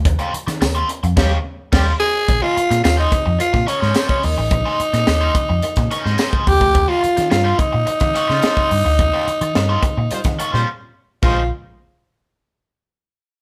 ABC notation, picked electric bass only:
X:1
M:4/4
L:1/16
Q:1/4=107
K:Bbdor
V:1 name="Picked electric bass" clef=bass
E,, z2 E, E,,2 z F,, E,,2 z2 E,,2 z2 | B,,, z2 B,, E,,2 z F,, z B,, z A,, z2 E,, =A,,, | B,,, z2 B,, E,,2 z F,, z B,, z A,, z2 E,, =D,, | E,, z2 E, G,,2 z B,, z E, z D, z2 G,, =D,, |
E,, z2 E, G,,2 z B,, z E, z B,, z4 | B,,,2 z12 z2 |]